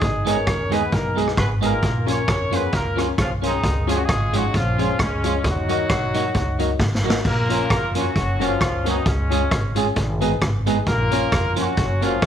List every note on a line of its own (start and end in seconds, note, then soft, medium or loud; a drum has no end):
0.00 0.40 G#1 loud
0.00 0.25 G#3 medium
0.00 0.25 D#4 medium
0.00 0.25 G#4 medium
0.00 kick loud
0.00 closed hi-hat medium
0.25 0.36 G#3 medium
0.25 0.36 B3 medium
0.25 0.73 C#4 medium
0.25 0.38 D#4 loud
0.25 0.36 D#4 medium
0.25 0.38 G#4 medium
0.25 0.36 G#4 medium
0.25 0.73 A#4 medium
0.25 0.38 B4 medium
0.25 0.73 C#5 medium
0.25 0.39 D#5 medium
0.25 closed hi-hat medium
0.47 0.85 D#2 medium
0.47 kick loud
0.47 cross-stick loud
0.47 closed hi-hat medium
0.70 0.81 G#3 medium
0.70 0.81 B3 medium
0.70 0.93 B3 medium
0.70 0.83 D#4 medium
0.70 0.81 D#4 loud
0.70 0.83 G#4 medium
0.70 0.81 G#4 medium
0.70 0.93 G#4 medium
0.70 0.84 B4 medium
0.70 0.93 B4 medium
0.70 0.84 D#5 medium
0.70 closed hi-hat medium
0.92 1.31 B1 loud
0.92 1.18 A#3 medium
0.92 1.18 D#4 medium
0.92 1.18 A#4 medium
0.92 0.97 B4 soft
0.92 0.97 D#5 soft
0.92 kick medium
0.92 closed hi-hat medium
1.15 1.26 G#3 medium
1.15 1.26 B3 medium
1.15 1.26 D#4 medium
1.15 1.28 D#4 medium
1.15 1.29 G#4 medium
1.15 1.27 G#4 medium
1.15 1.29 B4 medium
1.15 1.29 D#5 loud
1.15 closed hi-hat medium
1.27 cross-stick medium
1.37 1.76 G#1 loud
1.37 1.49 B3 medium
1.37 1.50 G#4 medium
1.37 1.49 B4 medium
1.37 kick loud
1.37 cross-stick loud
1.37 closed hi-hat medium
1.61 1.71 G#3 medium
1.61 2.05 A#3 medium
1.61 1.71 B3 medium
1.61 1.73 D#4 medium
1.61 1.72 D#4 loud
1.61 2.05 F4 medium
1.61 1.73 G#4 medium
1.61 1.72 G#4 medium
1.61 2.05 A#4 medium
1.61 1.74 B4 medium
1.61 1.74 D#5 medium
1.61 closed hi-hat loud
1.83 2.21 A#1 loud
1.83 kick loud
1.83 closed hi-hat medium
2.06 2.17 F3 medium
2.06 2.17 A#3 medium
2.06 2.18 C#4 loud
2.06 2.17 C#4 medium
2.06 2.54 C#4 medium
2.06 2.19 F4 medium
2.06 2.18 F4 medium
2.06 2.19 A#4 medium
2.06 2.54 A#4 medium
2.06 2.19 C#5 loud
2.06 2.54 C#5 medium
2.06 closed hi-hat loud
2.28 2.66 F2 medium
2.28 kick loud
2.28 cross-stick loud
2.28 closed hi-hat medium
2.51 2.62 F3 medium
2.51 2.62 A#3 medium
2.51 2.63 C#4 medium
2.51 2.62 C#4 medium
2.51 2.64 F4 medium
2.51 2.62 F4 medium
2.51 2.64 A#4 medium
2.51 2.64 C#5 medium
2.51 closed hi-hat loud
2.55 2.74 B3 medium
2.55 2.74 G#4 medium
2.55 2.74 B4 medium
2.72 3.12 C#2 medium
2.72 2.99 A#3 medium
2.72 2.99 F4 medium
2.72 2.99 A#4 medium
2.72 kick medium
2.72 closed hi-hat medium
2.96 3.07 F3 medium
2.96 3.07 A#3 medium
2.96 3.09 C#4 medium
2.96 3.07 C#4 medium
2.96 3.09 F4 medium
2.96 3.08 F4 medium
2.96 3.09 A#4 medium
2.96 3.09 C#5 loud
2.96 cross-stick medium
2.96 closed hi-hat medium
3.18 3.57 B1 loud
3.18 3.31 F3 medium
3.18 3.31 C#4 medium
3.18 3.31 F4 medium
3.18 kick medium
3.18 cross-stick loud
3.18 closed hi-hat medium
3.42 3.52 F3 medium
3.42 3.52 A#3 medium
3.42 3.54 C#4 medium
3.42 3.53 C#4 medium
3.42 3.54 F4 medium
3.42 3.53 F4 medium
3.42 3.54 A#4 medium
3.42 3.55 C#5 medium
3.42 closed hi-hat medium
3.46 3.87 D#3 medium
3.46 3.87 G#3 medium
3.46 3.87 D#4 medium
3.63 4.02 C#2 medium
3.63 kick loud
3.63 closed hi-hat medium
3.87 3.98 F3 medium
3.87 3.98 G#3 medium
3.87 3.96 G#3 medium
3.87 3.99 C#4 loud
3.87 3.98 C#4 medium
3.87 3.99 F4 medium
3.87 3.98 F4 medium
3.87 3.95 F4 medium
3.87 4.00 G#4 medium
3.87 3.96 G#4 medium
3.87 4.00 C#5 loud
3.87 closed hi-hat medium
3.95 4.01 F#3 medium
3.95 4.01 F#4 medium
4.03 4.35 G#3 loud
4.03 4.35 F4 medium
4.03 4.35 G#4 loud
4.09 4.47 G#1 medium
4.09 kick loud
4.09 cross-stick loud
4.09 closed hi-hat medium
4.33 4.43 F3 medium
4.33 4.55 F#3 medium
4.33 4.43 G#3 loud
4.33 4.45 C#4 medium
4.33 4.43 C#4 medium
4.33 4.55 D#4 medium
4.33 4.45 F4 medium
4.33 4.44 F4 loud
4.33 4.55 F#4 loud
4.33 4.45 G#4 medium
4.33 4.45 C#5 loud
4.33 closed hi-hat loud
4.54 4.92 A#1 loud
4.54 5.00 F3 medium
4.54 4.99 C#4 medium
4.54 5.00 F4 loud
4.54 4.59 G#4 soft
4.54 4.59 C#5 soft
4.54 kick loud
4.54 closed hi-hat medium
4.78 4.88 F3 medium
4.78 4.88 G#3 medium
4.78 4.90 C#4 medium
4.78 4.89 C#4 medium
4.78 4.90 F4 medium
4.78 4.89 F4 medium
4.78 4.90 G#4 medium
4.78 4.91 C#5 loud
4.78 closed hi-hat medium
4.99 5.37 C#2 loud
4.99 5.45 C#3 medium
4.99 5.45 G#3 medium
4.99 5.45 C#4 medium
4.99 kick loud
4.99 cross-stick loud
4.99 closed hi-hat medium
5.23 5.33 F3 medium
5.23 5.34 G#3 medium
5.23 5.35 C#4 medium
5.23 5.34 C#4 medium
5.23 5.35 F4 medium
5.23 5.34 F4 medium
5.23 5.36 G#4 medium
5.23 5.36 C#5 medium
5.23 closed hi-hat loud
5.44 5.83 D#2 loud
5.44 6.77 F#3 loud
5.44 6.77 D#4 medium
5.44 6.77 F#4 loud
5.44 kick loud
5.44 closed hi-hat medium
5.68 5.79 F#3 medium
5.68 5.79 A#3 medium
5.68 5.80 D#4 loud
5.68 5.79 D#4 medium
5.68 5.81 F#4 medium
5.68 5.79 F#4 medium
5.68 5.81 A#4 medium
5.68 5.81 D#5 medium
5.68 closed hi-hat medium
5.89 6.28 A#1 medium
5.89 kick loud
5.89 cross-stick loud
5.89 closed hi-hat medium
6.14 6.24 F#3 medium
6.14 6.24 A#3 medium
6.14 6.26 D#4 medium
6.14 6.24 D#4 medium
6.14 6.26 F#4 medium
6.14 6.25 F#4 medium
6.14 6.26 A#4 medium
6.14 6.26 D#5 loud
6.14 closed hi-hat loud
6.34 6.73 C#2 loud
6.34 kick loud
6.34 closed hi-hat medium
6.59 6.69 F#3 medium
6.59 6.69 A#3 medium
6.59 6.71 D#4 loud
6.59 6.69 D#4 medium
6.59 6.71 F#4 medium
6.59 6.69 F#4 medium
6.59 6.71 A#4 medium
6.59 6.71 D#5 loud
6.59 closed hi-hat medium
6.79 7.18 G#1 medium
6.79 kick loud
6.79 snare medium
6.95 snare medium
7.04 7.14 F#3 medium
7.04 7.14 A#3 medium
7.04 7.16 D#4 medium
7.04 7.15 D#4 medium
7.04 7.16 F#4 medium
7.04 7.15 F#4 medium
7.04 7.16 A#4 medium
7.04 7.16 D#5 medium
7.10 snare loud
7.25 7.63 A#1 loud
7.25 7.92 A#3 loud
7.25 7.91 F4 medium
7.25 7.92 A#4 loud
7.25 kick loud
7.25 crash medium
7.49 7.59 F3 medium
7.49 7.59 A#3 medium
7.49 7.61 C#4 medium
7.49 7.60 C#4 medium
7.49 7.61 F4 medium
7.49 7.60 F4 medium
7.49 7.61 A#4 loud
7.49 7.61 C#5 loud
7.49 closed hi-hat loud
7.70 8.09 F2 medium
7.70 kick loud
7.70 cross-stick loud
7.70 closed hi-hat medium
7.95 8.05 F3 medium
7.95 8.05 A#3 medium
7.95 8.06 C#4 medium
7.95 8.05 C#4 medium
7.95 8.06 F4 medium
7.95 8.05 F4 medium
7.95 8.06 A#4 medium
7.95 8.07 C#5 medium
7.95 closed hi-hat loud
7.99 8.42 F#3 medium
7.99 8.42 C#4 medium
7.99 8.42 F#4 loud
8.15 8.54 F#1 medium
8.15 8.20 A#4 soft
8.15 8.20 C#5 soft
8.15 kick loud
8.15 closed hi-hat medium
8.39 8.50 F#3 medium
8.39 8.50 A#3 medium
8.39 8.51 C#4 loud
8.39 8.50 C#4 medium
8.39 8.87 C#4 medium
8.39 8.51 F#4 medium
8.39 8.52 A#4 medium
8.39 8.52 C#5 loud
8.39 closed hi-hat medium
8.44 8.87 F3 medium
8.44 8.87 F4 medium
8.61 8.99 C#2 loud
8.61 muted clean electric guitar stroke soft
8.61 kick loud
8.61 cross-stick loud
8.61 closed hi-hat medium
8.84 8.95 F#3 medium
8.84 8.96 A#3 medium
8.84 9.07 B3 medium
8.84 8.96 C#4 medium
8.84 8.97 F#4 medium
8.84 8.96 F#4 medium
8.84 8.97 A#4 medium
8.84 8.97 C#5 medium
8.84 closed hi-hat medium
8.89 9.07 D#3 medium
8.89 9.07 D#4 medium
9.06 9.44 C#2 loud
9.06 9.73 C#3 medium
9.06 9.73 G#3 medium
9.06 9.73 C#4 medium
9.06 kick loud
9.06 closed hi-hat medium
9.30 9.41 G#3 medium
9.30 9.42 C#4 medium
9.30 9.41 C#4 medium
9.30 9.42 F4 medium
9.30 9.41 F4 medium
9.30 9.42 G#4 medium
9.30 9.41 G#4 medium
9.30 9.42 C#5 loud
9.30 closed hi-hat medium
9.51 9.90 G#1 medium
9.51 kick loud
9.51 cross-stick loud
9.51 closed hi-hat medium
9.75 9.85 G#3 medium
9.75 9.87 C#4 medium
9.75 9.86 C#4 medium
9.75 9.87 F4 medium
9.75 9.86 F4 medium
9.75 9.87 G#4 medium
9.75 9.86 G#4 loud
9.75 9.87 C#5 loud
9.75 closed hi-hat medium
9.96 10.35 G#1 loud
9.96 kick loud
9.96 closed hi-hat medium
10.21 10.30 G#3 medium
10.21 10.32 B3 medium
10.21 10.31 B3 medium
10.21 10.32 D#4 medium
10.21 10.31 D#4 medium
10.21 10.33 G#4 medium
10.21 10.31 G#4 medium
10.21 10.33 B4 loud
10.21 closed hi-hat medium
10.41 10.80 G#1 medium
10.41 muted clean electric guitar stroke soft
10.41 kick loud
10.41 cross-stick loud
10.41 closed hi-hat medium
10.66 10.76 G#3 loud
10.66 10.78 B3 medium
10.66 10.76 B3 medium
10.66 10.78 D#4 medium
10.66 10.76 D#4 medium
10.66 10.78 G#4 medium
10.66 10.76 G#4 medium
10.66 10.78 B4 loud
10.66 closed hi-hat loud
10.86 11.25 A#1 medium
10.86 11.54 A#3 loud
10.86 11.54 F4 medium
10.86 11.54 A#4 loud
10.86 kick loud
10.86 closed hi-hat medium
11.11 11.21 F3 medium
11.11 11.21 A#3 loud
11.11 11.23 C#4 loud
11.11 11.22 C#4 loud
11.11 11.23 F4 medium
11.11 11.22 F4 loud
11.11 11.23 A#4 loud
11.11 11.23 C#5 loud
11.11 closed hi-hat medium
11.32 11.70 F2 medium
11.32 kick loud
11.32 cross-stick loud
11.32 closed hi-hat medium
11.56 11.66 F3 medium
11.56 12.03 F#3 medium
11.56 11.66 A#3 loud
11.56 11.68 C#4 medium
11.56 11.66 C#4 medium
11.56 12.02 C#4 medium
11.56 11.68 F4 medium
11.56 11.67 F4 medium
11.56 12.03 F#4 loud
11.56 11.68 A#4 medium
11.56 11.68 C#5 medium
11.56 closed hi-hat medium
11.77 12.16 F#1 loud
11.77 11.82 A#4 soft
11.77 11.82 C#5 soft
11.77 kick loud
11.77 closed hi-hat medium
12.01 12.26 F3 medium
12.01 12.11 F#3 medium
12.01 12.12 A#3 medium
12.01 12.13 C#4 medium
12.01 12.12 C#4 loud
12.01 12.26 C#4 medium
12.01 12.26 F4 medium
12.01 12.13 F#4 medium
12.01 12.12 F#4 loud
12.01 12.13 A#4 medium
12.01 12.14 C#5 loud
12.01 closed hi-hat medium
12.22 12.26 B1 loud
12.22 kick loud
12.22 cross-stick loud
12.22 closed hi-hat medium